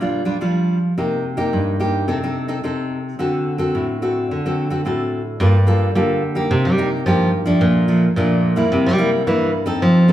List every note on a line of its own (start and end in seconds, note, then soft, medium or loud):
0.00 0.39 A#2 medium
0.00 0.24 G3 soft
0.00 0.24 D4 medium
0.00 0.24 F4 medium
0.25 0.36 G3 medium
0.25 0.36 D4 soft
0.25 0.36 F4 medium
0.41 0.94 F3 medium
0.41 0.77 G3 soft
0.41 0.77 D4 soft
0.41 0.77 F4 soft
0.98 1.50 C3 medium
0.98 1.23 A#3 soft
0.98 1.24 D#4 soft
0.98 1.24 G4 medium
1.37 1.75 A#3 medium
1.37 1.75 D#4 medium
1.37 1.75 G4 medium
1.53 2.05 G2 medium
1.80 2.05 A#3 medium
1.80 2.06 D#4 medium
1.80 2.06 G4 medium
2.08 2.61 C3 medium
2.08 2.17 C4 medium
2.08 2.18 D#4 medium
2.08 2.18 A4 medium
2.23 2.46 C4 medium
2.23 2.46 D#4 medium
2.23 2.46 A4 medium
2.48 2.58 C4 soft
2.48 2.58 D#4 soft
2.48 2.59 A4 medium
2.64 3.16 C3 medium
2.64 2.99 C4 medium
2.64 2.99 D#4 soft
2.64 3.00 A4 soft
3.19 3.71 D3 medium
3.19 3.56 C4 soft
3.19 3.56 F#4 medium
3.19 3.56 A4 medium
3.58 3.96 C4 medium
3.58 3.97 F#4 medium
3.58 3.97 A4 medium
3.75 4.27 A2 medium
4.02 4.39 C4 medium
4.02 4.39 F#4 soft
4.02 4.39 A4 medium
4.31 4.83 D3 medium
4.46 4.68 C4 medium
4.46 4.68 F#4 medium
4.46 4.68 A4 medium
4.70 4.80 C4 medium
4.70 4.80 F#4 soft
4.70 4.80 A4 medium
4.85 5.38 A2 medium
4.85 5.20 C4 soft
4.85 5.21 F#4 soft
4.85 5.21 A4 medium
5.40 5.87 G2 medium
5.40 5.93 G3 medium
5.40 5.56 A#3 medium
5.40 5.57 F4 medium
5.40 5.57 A4 medium
5.67 5.90 A#3 medium
5.67 5.91 F4 medium
5.67 5.91 A4 medium
5.95 6.48 D3 medium
5.95 6.42 G3 medium
5.95 6.21 A#3 medium
5.95 6.22 F4 medium
5.95 6.22 A4 medium
6.35 6.73 A#3 medium
6.35 6.73 D#4 medium
6.35 6.73 G4 medium
6.51 6.64 C3 loud
6.51 7.03 C3 medium
6.65 6.88 G3 medium
6.78 7.01 A#3 medium
6.78 7.01 D#4 medium
6.78 7.02 G4 medium
7.06 7.59 G2 medium
7.06 7.29 F3 medium
7.06 7.43 A#3 medium
7.06 7.43 D#4 medium
7.06 7.44 G4 medium
7.46 7.83 F3 medium
7.46 7.84 A3 medium
7.46 7.84 D4 medium
7.61 8.13 A#2 medium
7.61 8.08 A#2 medium
7.88 8.04 F3 medium
7.88 8.05 A3 medium
7.88 8.05 D4 medium
8.16 8.63 A#2 medium
8.16 8.69 A#2 medium
8.16 8.54 F3 medium
8.16 8.54 A3 soft
8.16 8.54 D4 medium
8.56 8.94 G3 medium
8.56 8.94 A#3 medium
8.56 8.94 E4 medium
8.72 8.85 C3 medium
8.72 9.24 C3 medium
8.86 9.09 G3 medium
8.98 9.22 G3 medium
8.98 9.22 A#3 medium
8.98 9.22 E4 medium
9.27 9.79 G2 medium
9.27 9.50 E3 medium
9.27 9.64 G3 medium
9.27 9.64 A#3 medium
9.27 9.64 E4 medium
9.66 10.04 C4 medium
9.66 10.04 D#4 medium
9.66 10.04 A4 medium
9.82 10.13 F3 loud
9.82 10.13 F3 medium
10.08 10.13 C4 medium
10.08 10.13 D#4 medium
10.08 10.13 A4 medium